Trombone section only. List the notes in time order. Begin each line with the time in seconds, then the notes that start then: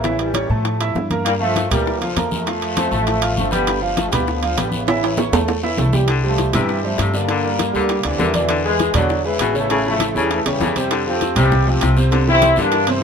Already playing: C#3 E3
0.20 E3 G3
0.51 F3 A3
1.25 G3 A#3
1.39 F3 A3
1.70 E3 G3
2.00 D3 F3
2.31 F3 A3
3.37 F3 A3
3.51 D3 G3
3.81 D3 F3
3.97 F3 A3
4.11 E3 G3
4.27 D3 F3
4.57 D3 G3
4.71 C#3 E3
5.62 C#3 E3
5.79 E3 A3
5.94 C3 E3 G3
6.25 F3 A3
6.54 E3 G3
6.85 F3 A3
7.16 G3 A#3
8.06 C3 E3
8.35 B2 E3
8.66 E3 G#3
8.94 D3 F#3
9.25 C#3 E3
9.56 E3 A3
9.88 F3 A3
10.17 E3 G3
10.32 E3 A3
10.48 E3 G3
10.76 C3 G3
11.07 A3 C4
11.38 E3 G3
11.68 A3 C4
12.29 C4 E4
12.60 A#3 D4
12.90 C3 E3